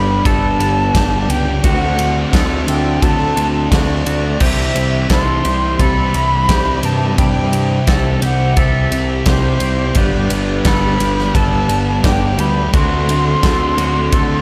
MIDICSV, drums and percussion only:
0, 0, Header, 1, 2, 480
1, 0, Start_track
1, 0, Tempo, 693642
1, 1133, Time_signature, 4, 2, 24, 8
1, 9975, End_track
2, 0, Start_track
2, 0, Title_t, "Drums"
2, 175, Note_on_c, 9, 36, 113
2, 177, Note_on_c, 9, 51, 97
2, 245, Note_off_c, 9, 36, 0
2, 246, Note_off_c, 9, 51, 0
2, 417, Note_on_c, 9, 51, 76
2, 487, Note_off_c, 9, 51, 0
2, 656, Note_on_c, 9, 36, 127
2, 656, Note_on_c, 9, 51, 112
2, 665, Note_on_c, 9, 38, 127
2, 725, Note_off_c, 9, 36, 0
2, 726, Note_off_c, 9, 51, 0
2, 734, Note_off_c, 9, 38, 0
2, 898, Note_on_c, 9, 51, 88
2, 967, Note_off_c, 9, 51, 0
2, 1133, Note_on_c, 9, 51, 111
2, 1135, Note_on_c, 9, 36, 120
2, 1202, Note_off_c, 9, 51, 0
2, 1204, Note_off_c, 9, 36, 0
2, 1375, Note_on_c, 9, 51, 88
2, 1444, Note_off_c, 9, 51, 0
2, 1614, Note_on_c, 9, 36, 115
2, 1616, Note_on_c, 9, 51, 111
2, 1625, Note_on_c, 9, 38, 109
2, 1683, Note_off_c, 9, 36, 0
2, 1686, Note_off_c, 9, 51, 0
2, 1694, Note_off_c, 9, 38, 0
2, 1855, Note_on_c, 9, 51, 84
2, 1924, Note_off_c, 9, 51, 0
2, 2093, Note_on_c, 9, 36, 108
2, 2093, Note_on_c, 9, 51, 109
2, 2162, Note_off_c, 9, 36, 0
2, 2162, Note_off_c, 9, 51, 0
2, 2333, Note_on_c, 9, 51, 79
2, 2402, Note_off_c, 9, 51, 0
2, 2572, Note_on_c, 9, 36, 115
2, 2574, Note_on_c, 9, 51, 118
2, 2582, Note_on_c, 9, 38, 118
2, 2642, Note_off_c, 9, 36, 0
2, 2643, Note_off_c, 9, 51, 0
2, 2651, Note_off_c, 9, 38, 0
2, 2812, Note_on_c, 9, 51, 86
2, 2881, Note_off_c, 9, 51, 0
2, 3046, Note_on_c, 9, 49, 109
2, 3050, Note_on_c, 9, 36, 116
2, 3115, Note_off_c, 9, 49, 0
2, 3119, Note_off_c, 9, 36, 0
2, 3291, Note_on_c, 9, 51, 83
2, 3360, Note_off_c, 9, 51, 0
2, 3527, Note_on_c, 9, 51, 101
2, 3530, Note_on_c, 9, 36, 109
2, 3535, Note_on_c, 9, 38, 116
2, 3596, Note_off_c, 9, 51, 0
2, 3599, Note_off_c, 9, 36, 0
2, 3604, Note_off_c, 9, 38, 0
2, 3770, Note_on_c, 9, 51, 86
2, 3839, Note_off_c, 9, 51, 0
2, 4010, Note_on_c, 9, 36, 108
2, 4010, Note_on_c, 9, 51, 102
2, 4079, Note_off_c, 9, 36, 0
2, 4080, Note_off_c, 9, 51, 0
2, 4250, Note_on_c, 9, 51, 69
2, 4319, Note_off_c, 9, 51, 0
2, 4491, Note_on_c, 9, 36, 123
2, 4491, Note_on_c, 9, 51, 109
2, 4499, Note_on_c, 9, 38, 124
2, 4560, Note_off_c, 9, 36, 0
2, 4560, Note_off_c, 9, 51, 0
2, 4568, Note_off_c, 9, 38, 0
2, 4727, Note_on_c, 9, 51, 84
2, 4796, Note_off_c, 9, 51, 0
2, 4971, Note_on_c, 9, 36, 120
2, 4971, Note_on_c, 9, 51, 108
2, 5040, Note_off_c, 9, 36, 0
2, 5040, Note_off_c, 9, 51, 0
2, 5210, Note_on_c, 9, 51, 84
2, 5280, Note_off_c, 9, 51, 0
2, 5447, Note_on_c, 9, 51, 104
2, 5450, Note_on_c, 9, 36, 118
2, 5456, Note_on_c, 9, 38, 112
2, 5517, Note_off_c, 9, 51, 0
2, 5520, Note_off_c, 9, 36, 0
2, 5525, Note_off_c, 9, 38, 0
2, 5689, Note_on_c, 9, 51, 84
2, 5758, Note_off_c, 9, 51, 0
2, 5928, Note_on_c, 9, 51, 100
2, 5931, Note_on_c, 9, 36, 112
2, 5997, Note_off_c, 9, 51, 0
2, 6000, Note_off_c, 9, 36, 0
2, 6172, Note_on_c, 9, 51, 85
2, 6241, Note_off_c, 9, 51, 0
2, 6406, Note_on_c, 9, 51, 117
2, 6409, Note_on_c, 9, 36, 122
2, 6414, Note_on_c, 9, 38, 125
2, 6475, Note_off_c, 9, 51, 0
2, 6479, Note_off_c, 9, 36, 0
2, 6483, Note_off_c, 9, 38, 0
2, 6644, Note_on_c, 9, 51, 89
2, 6714, Note_off_c, 9, 51, 0
2, 6883, Note_on_c, 9, 51, 114
2, 6889, Note_on_c, 9, 36, 110
2, 6952, Note_off_c, 9, 51, 0
2, 6958, Note_off_c, 9, 36, 0
2, 7129, Note_on_c, 9, 51, 89
2, 7198, Note_off_c, 9, 51, 0
2, 7368, Note_on_c, 9, 51, 110
2, 7371, Note_on_c, 9, 36, 120
2, 7376, Note_on_c, 9, 38, 115
2, 7437, Note_off_c, 9, 51, 0
2, 7440, Note_off_c, 9, 36, 0
2, 7446, Note_off_c, 9, 38, 0
2, 7614, Note_on_c, 9, 51, 84
2, 7683, Note_off_c, 9, 51, 0
2, 7743, Note_on_c, 9, 38, 34
2, 7812, Note_off_c, 9, 38, 0
2, 7853, Note_on_c, 9, 36, 105
2, 7855, Note_on_c, 9, 51, 99
2, 7922, Note_off_c, 9, 36, 0
2, 7924, Note_off_c, 9, 51, 0
2, 8092, Note_on_c, 9, 51, 76
2, 8161, Note_off_c, 9, 51, 0
2, 8331, Note_on_c, 9, 51, 108
2, 8332, Note_on_c, 9, 36, 124
2, 8340, Note_on_c, 9, 38, 120
2, 8400, Note_off_c, 9, 51, 0
2, 8401, Note_off_c, 9, 36, 0
2, 8409, Note_off_c, 9, 38, 0
2, 8571, Note_on_c, 9, 51, 86
2, 8641, Note_off_c, 9, 51, 0
2, 8813, Note_on_c, 9, 51, 103
2, 8814, Note_on_c, 9, 36, 125
2, 8882, Note_off_c, 9, 51, 0
2, 8883, Note_off_c, 9, 36, 0
2, 9058, Note_on_c, 9, 51, 81
2, 9127, Note_off_c, 9, 51, 0
2, 9295, Note_on_c, 9, 36, 121
2, 9296, Note_on_c, 9, 51, 101
2, 9304, Note_on_c, 9, 38, 110
2, 9365, Note_off_c, 9, 36, 0
2, 9365, Note_off_c, 9, 51, 0
2, 9373, Note_off_c, 9, 38, 0
2, 9536, Note_on_c, 9, 51, 87
2, 9606, Note_off_c, 9, 51, 0
2, 9774, Note_on_c, 9, 51, 103
2, 9775, Note_on_c, 9, 36, 109
2, 9843, Note_off_c, 9, 51, 0
2, 9844, Note_off_c, 9, 36, 0
2, 9975, End_track
0, 0, End_of_file